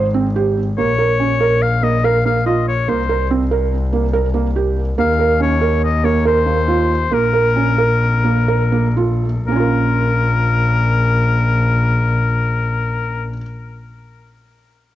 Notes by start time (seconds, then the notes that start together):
Already playing: G#1
0.14 C4
0.36 G4
0.77 A#1 A#3 C#5
0.99 A#4
1.20 C#4
1.41 A#4
1.62 F5
1.83 A#3 D#5
2.04 A#4 F5
2.25 A#3 F5
2.46 F4 D#5
2.68 C#5
2.88 C2 A#3 C5
3.09 A#4
3.31 C4
3.51 A#4
3.93 A#3
4.13 A#4
4.34 A#3
4.56 G4
4.98 D#2 A#3 F5
5.19 A#4
5.40 C#4 C#5
5.61 A#4
5.84 D#5
6.04 A#3 C#5
6.25 A#4 C5
6.46 A#3
6.68 F4
7.11 A#1 A#3 A#4
7.33 A#4
7.56 C#4
7.78 A#4
8.24 A#3
8.48 A#4
8.72 A#3
8.97 F4
9.47 A#1 A#3 A#4
9.52 C#4
9.56 F4
9.60 A#4